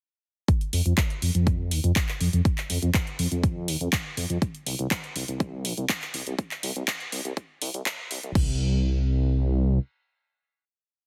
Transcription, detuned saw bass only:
0.73 0.81 F2 medium
0.86 0.93 F2 medium
1.22 1.30 F2 medium
1.35 1.73 F2 medium
1.71 1.79 D#2 medium
1.84 1.92 F2 medium
2.21 2.29 F2 medium
2.33 2.41 F2 medium
2.70 2.78 F2 loud
2.82 2.90 F2 medium
3.19 3.27 F2 medium
3.32 3.70 F2 medium
3.68 3.76 D#2 loud
3.81 3.88 F2 medium
4.17 4.25 F2 loud
4.30 4.38 F2 medium
4.66 4.75 C2 medium
4.79 4.87 C2 medium
5.16 5.24 C2 medium
5.28 5.66 C2 medium
5.65 5.73 A#1 medium
5.78 5.85 C2 medium
6.14 6.22 C2 loud
6.27 6.34 C2 medium
6.63 6.71 C2 loud
6.76 6.83 C2 medium
7.12 7.20 C2 medium
7.25 7.33 C2 medium
7.62 7.70 C2 loud
7.74 7.82 C2 medium
8.11 8.19 C2 loud
8.23 8.31 C2 medium
8.35 9.79 C2 loud

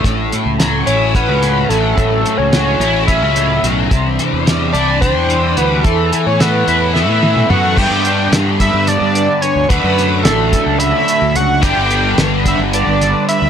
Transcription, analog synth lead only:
0.86 1.12 C#5 medium
0.86 1.12 G#5 medium
1.15 1.70 B4 medium
1.15 1.70 F#5 medium
1.69 1.96 A4 medium
1.69 1.96 E5 medium
1.97 2.39 A4 medium
1.97 2.39 E5 medium
2.37 2.50 C#5 medium
2.37 2.50 G#5 medium
2.51 3.03 C#5 medium
2.51 3.03 G#5 medium
3.07 3.66 E5 loud
3.07 3.66 B5 loud
4.72 4.99 D5 loud
4.72 4.99 A5 loud
5.01 5.58 C5 loud
5.01 5.58 G5 loud
5.57 5.85 B4 medium
5.57 5.85 F#5 medium
5.84 6.25 A4 medium
5.84 6.25 E5 medium
6.27 6.42 C#5 medium
6.27 6.42 G#5 medium
6.41 6.93 B4 medium
6.41 6.93 F#5 medium
6.94 7.51 E5 medium
6.94 7.51 B5 medium
7.50 7.79 F#5 medium
7.50 7.79 C#6 medium
7.77 8.32 G5 loud
7.77 8.32 D6 loud
8.61 8.89 E5 medium
8.61 8.89 B5 medium
8.88 9.41 D5 medium
8.88 9.41 A5 medium
9.42 9.68 C#5 medium
9.42 9.68 G#5 medium
9.69 10.21 B4 loud
9.69 10.21 F#5 loud
10.23 10.80 A4 medium
10.23 10.78 E5 medium
10.78 11.37 E5 loud
10.78 11.37 B5 loud
11.36 11.64 F#5 loud
11.36 11.64 C#6 loud
11.63 12.18 G5 loud
11.63 12.18 D6 loud
12.48 12.60 E5 medium
12.48 12.60 B5 medium
12.74 13.25 D5 medium
12.74 13.25 A5 medium
13.29 13.50 E5 medium
13.29 13.50 B5 medium

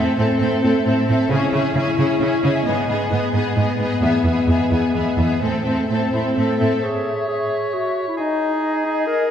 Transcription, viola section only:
0.00 0.16 C4 soft
0.17 0.38 C4 soft
0.39 0.61 C4 soft
0.62 0.83 C4 soft
0.85 1.06 C4 soft
1.07 1.29 C4 soft
1.30 1.51 C#4 soft
1.52 1.73 C#4 soft
1.75 1.97 C#4 soft
1.99 2.18 C#4 soft
2.19 2.42 C#4 soft
2.43 2.65 C#4 soft
2.65 2.87 B3 medium
2.88 3.10 B3 soft
3.11 3.33 B3 soft
3.34 3.56 B3 soft
3.57 3.78 B3 soft
3.79 4.00 B3 soft
4.01 4.23 B3 soft
4.24 4.47 B3 soft
4.48 4.69 B3 soft
4.70 4.92 B3 soft
4.93 5.17 B3 soft
5.18 5.41 B3 soft
5.42 5.65 C4 soft
5.66 5.88 C4 soft
5.89 6.11 C4 soft
6.13 6.35 C4 soft
6.36 6.57 C4 soft
6.59 6.82 C4 soft

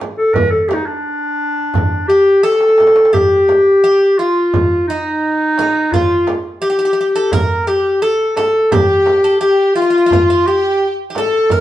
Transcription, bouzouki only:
2.10 2.43 G4 medium
2.43 3.12 A4 medium
3.13 3.83 G4 medium
3.84 4.16 G4 medium
4.19 4.89 F4 medium
4.90 5.58 D#4 medium
5.59 5.93 D#4 medium
5.94 6.33 F4 medium
6.62 6.69 G4 medium
6.70 6.77 G4 medium
6.79 6.84 G4 medium
6.85 6.92 G4 medium
6.93 6.99 G4 medium
7.01 7.07 G4 medium
7.16 7.32 A4 medium
7.33 7.67 A#4 loud
7.67 8.00 G4 medium
8.02 8.36 A4 medium
8.37 8.72 A4 medium
8.72 9.24 G4 medium
9.24 9.40 A4 medium
9.41 9.75 G4 medium
9.76 9.81 F4 medium
9.82 9.89 F4 medium
9.90 9.97 F4 medium
9.98 10.05 F4 soft
10.06 10.12 F4 medium
10.13 10.21 F4 medium
10.30 10.47 F4 medium
10.48 10.87 G4 medium
11.10 11.17 G4 medium
11.18 11.51 A4 medium
11.52 11.60 A#4 medium

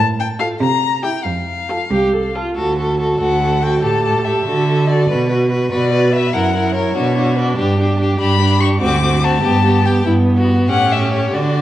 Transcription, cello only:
0.00 0.48 A2 medium
0.60 1.12 C3 medium
1.25 1.77 F2 soft
1.90 2.43 C2 medium
2.56 3.13 D2 soft
3.20 3.75 D2 soft
3.83 4.39 A2 soft
4.46 5.02 D3 soft
5.09 5.64 B2 soft
5.72 6.27 B2 soft
6.34 6.88 F#2 medium
6.96 7.51 B2 medium
7.58 8.12 G2 medium
8.20 8.74 G2 medium
8.82 9.37 D2 medium
9.44 9.99 G2 medium
10.06 10.66 G2 medium
10.70 11.34 A2 medium
11.35 11.62 D3 soft

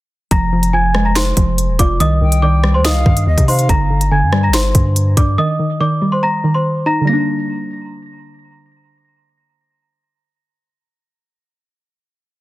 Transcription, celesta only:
0.31 0.71 A#5 loud
0.31 0.71 A#6 medium
0.73 1.03 G#5 medium
0.73 1.04 G#6 medium
1.05 1.14 A#5 medium
1.05 1.15 A#6 medium
1.16 1.76 C5 medium
1.16 1.75 C6 medium
1.79 1.98 D5 medium
1.79 1.97 D6 medium
2.00 2.40 D#5 medium
2.00 2.40 D#6 loud
2.42 2.73 D5 medium
2.42 2.72 D6 loud
2.74 2.84 C5 medium
2.74 2.83 C6 medium
2.85 3.45 D#5 medium
2.85 3.44 D#6 medium
3.48 3.67 C5 medium
3.48 3.66 C6 medium
3.69 4.09 A#5 loud
3.69 4.09 A#6 medium
4.11 4.41 G#5 medium
4.11 4.42 G#6 medium
4.43 4.52 A#5 medium
4.43 4.53 A#6 medium
4.54 5.14 C5 medium
4.54 5.13 C6 medium
5.17 5.35 D5 medium
5.17 5.35 D6 medium
5.38 5.78 D#5 medium
5.38 5.78 D#6 loud
5.81 6.11 D5 medium
5.81 6.10 D6 loud
6.12 6.22 C5 medium
6.12 6.21 C6 medium
6.23 6.53 A#5 loud
6.23 6.53 A#6 medium
6.54 6.85 C5 medium
6.54 6.84 C6 medium
6.86 7.04 A#5 medium
6.86 7.05 A#6 medium
7.07 8.30 A#6 medium

